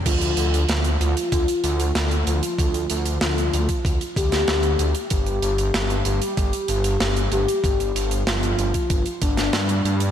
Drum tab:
CC |x---------------|----------------|----------------|----------------|
HH |xxxxxxxxxxxxxxxx|xxxxxxxxxxxxxxxx|xxxxxxxxxxxxxxxx|xxxxxxxxxxxxxxxx|
SD |----o-------o---|----o------oo---|----o-------o---|----o------oo---|
BD |o-------o-------|o------oo-o-----|o-------o-------|o------oo-o-----|